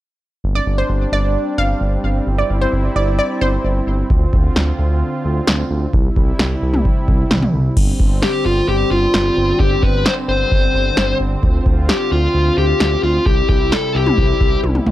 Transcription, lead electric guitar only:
8.23 8.44 G4 medium
8.46 8.68 F4 medium
8.69 8.91 G4 medium
8.91 9.60 F4 medium
9.60 9.84 G4 medium
9.83 10.06 B4 medium
10.06 10.12 C5 loud
10.29 11.16 C5 loud
11.89 12.12 G4 medium
12.12 12.57 F4 medium
12.58 13.03 G4 medium
13.03 13.25 F4 medium
13.26 13.48 G4 medium
13.49 13.73 G4 medium
13.72 13.96 A4 loud
13.95 14.60 G4 medium

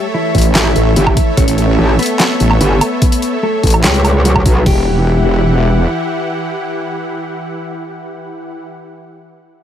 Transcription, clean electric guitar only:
0.14 0.49 E3 medium
0.14 0.49 E4 medium
0.55 0.90 E3 medium
0.55 0.90 E4 medium
0.96 1.31 E3 medium
0.96 1.31 E4 medium
1.37 1.91 C#4 medium
1.37 1.91 C#5 loud
1.99 2.53 B3 medium
1.99 2.53 B4 loud
2.61 3.35 B3 medium
2.61 3.35 B4 medium
3.43 3.77 A3 medium
3.43 3.77 A4 medium
3.84 4.18 G3 medium
3.84 4.18 G4 loud
4.25 4.60 F#3 medium
4.25 4.60 F#4 medium
4.66 8.64 G4 medium

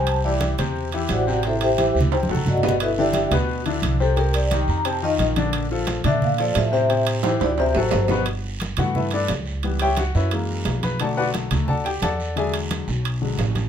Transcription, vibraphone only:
0.09 0.25 A5 loud
0.25 0.35 D5 medium
1.12 1.43 F#4 medium
1.12 1.43 C5 medium
1.12 1.43 D5 medium
1.12 1.43 F#5 medium
1.46 1.62 E4 medium
1.46 1.62 A4 medium
1.46 1.62 C5 medium
1.46 1.62 E5 medium
1.63 1.94 G4 medium
1.63 1.94 C5 medium
1.63 1.94 E5 medium
1.63 1.94 G5 loud
2.48 2.79 F#4 medium
2.48 2.79 D5 medium
2.48 2.79 D#5 medium
2.48 2.79 F#5 medium
2.82 2.98 E4 medium
2.82 2.98 A4 medium
2.82 2.98 B4 medium
2.82 2.98 E5 medium
2.99 3.30 G4 medium
2.99 3.30 D5 medium
2.99 3.30 E5 medium
2.99 3.30 G5 medium
4.02 4.18 A4 medium
4.18 4.35 A#4 medium
4.35 4.51 D5 medium
4.53 4.69 G5 medium
4.70 4.86 A#5 loud
4.88 5.03 A5 medium
5.04 5.14 D#5 loud
6.06 6.22 E5 medium
6.24 6.39 F5 medium
6.40 6.56 D5 medium
6.57 6.72 E5 medium
6.73 7.05 E5 medium
7.26 7.42 C5 medium
7.43 7.59 D5 medium
7.60 7.76 E5 loud
7.77 7.93 C5 medium
7.95 8.18 C5 medium

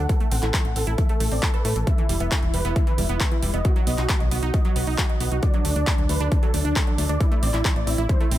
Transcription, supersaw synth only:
0.10 0.20 A4 medium
0.21 0.31 A4 medium
0.32 0.42 F#5 medium
0.43 0.53 A4 medium
0.54 0.64 A4 medium
0.65 0.75 F#5 medium
0.77 0.86 A4 medium
0.88 0.97 A4 medium
0.99 1.08 E5 medium
1.10 1.19 A4 medium
1.21 1.31 A4 medium
1.32 1.42 D5 medium
1.43 1.53 A4 medium
1.54 1.64 B4 medium
1.65 1.75 A4 medium
1.76 1.86 A4 medium
1.87 1.97 E5 loud
1.99 2.08 E4 medium
2.10 2.19 E4 medium
2.21 2.30 E5 medium
2.32 2.42 E4 medium
2.43 2.53 E4 medium
2.54 2.64 B4 medium
2.65 2.75 E4 medium
2.76 2.86 E4 medium
2.87 2.97 B4 medium
2.98 3.08 E4 medium
3.10 3.19 E4 medium
3.21 3.30 B4 medium
3.32 3.42 E4 medium
3.43 3.53 E4 medium
3.54 3.64 D#5 medium
3.65 3.75 F#4 medium
3.76 3.86 F#4 medium
3.87 3.97 D#5 medium
3.98 4.08 F#4 medium
4.10 4.19 F#4 medium
4.21 4.30 D#5 medium
4.32 4.42 F#4 medium
4.43 4.53 F#4 medium
4.54 4.64 D#5 medium
4.65 4.75 F#4 medium
4.76 4.86 F#4 medium
4.87 4.97 D#5 medium
4.99 5.08 F#4 medium
5.10 5.19 D#5 medium
5.21 5.31 F#4 medium
5.32 5.42 F#4 medium
5.43 5.53 D5 loud
5.54 5.64 D4 medium
5.65 5.75 D4 medium
5.76 5.86 D5 medium
5.87 5.97 D4 medium
5.98 6.08 D4 medium
6.09 6.19 B4 loud
6.20 6.30 D4 medium
6.32 6.41 D4 medium
6.43 6.53 A4 medium
6.54 6.64 D4 medium
6.65 6.75 D4 medium
6.76 6.86 A4 medium
6.87 6.97 D4 medium
6.98 7.08 D4 medium
7.09 7.19 D5 loud
7.21 7.30 E4 medium
7.32 7.42 E4 medium
7.43 7.53 D5 medium
7.54 7.64 E4 medium
7.65 7.75 E4 medium
7.76 7.86 D5 medium
7.87 7.97 E4 medium
7.98 8.08 E4 medium
8.10 8.19 C5 medium
8.21 8.30 E4 medium
8.32 8.38 E4 medium

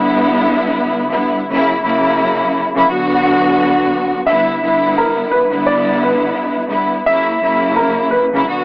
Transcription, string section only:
0.00 1.04 D3 loud
0.00 1.05 G3 loud
0.00 1.05 B3 loud
0.00 1.05 E4 loud
1.10 1.45 D3 medium
1.10 1.45 G3 medium
1.10 1.45 B3 medium
1.10 1.45 E4 medium
1.48 1.81 C#3 loud
1.48 1.81 F#3 medium
1.48 1.81 A#3 medium
1.48 1.82 E4 loud
1.83 2.65 C#3 loud
1.83 2.66 F#3 medium
1.83 2.66 A#3 medium
1.83 2.66 E4 loud
2.75 2.89 C#3 loud
2.75 2.88 F#3 loud
2.75 2.89 A#3 medium
2.75 2.89 E4 loud
2.89 4.19 D3 loud
2.89 4.19 F#3 loud
2.89 4.19 B3 medium
2.89 4.20 F#4 loud
4.26 4.60 D3 medium
4.26 4.60 G3 medium
4.26 4.60 B3 medium
4.26 4.60 E4 loud
4.62 5.45 D3 medium
4.62 5.45 G3 medium
4.62 5.45 B3 medium
4.62 5.45 E4 loud
5.50 6.63 D3 loud
5.50 6.63 G3 medium
5.50 6.63 B3 medium
5.50 6.63 E4 loud
6.68 7.03 D3 medium
6.68 7.03 G3 medium
6.68 7.03 B3 medium
6.68 7.03 E4 medium
7.06 7.39 C#3 medium
7.06 7.39 F#3 medium
7.06 7.40 A#3 medium
7.06 7.40 E4 loud
7.41 8.24 C#3 medium
7.41 8.24 F#3 medium
7.41 8.24 A#3 medium
7.41 8.24 E4 loud
8.33 8.47 C#3 loud
8.33 8.46 F#3 medium
8.33 8.47 A#3 medium
8.33 8.48 E4 loud
8.47 8.64 D3 loud
8.47 8.64 F#3 medium
8.47 8.64 B3 medium
8.47 8.64 F#4 loud

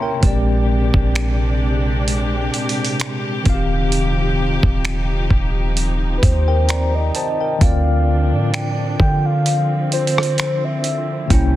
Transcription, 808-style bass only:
0.23 0.91 A#1 loud
0.94 2.50 A#1 loud
3.46 4.59 D#1 loud
4.63 5.28 D#1 loud
5.31 6.19 D#1 loud
6.23 7.11 D#2 loud
7.61 8.34 D2 loud
8.32 8.96 A2 medium
9.00 11.26 D3 loud
11.30 11.56 C2 loud

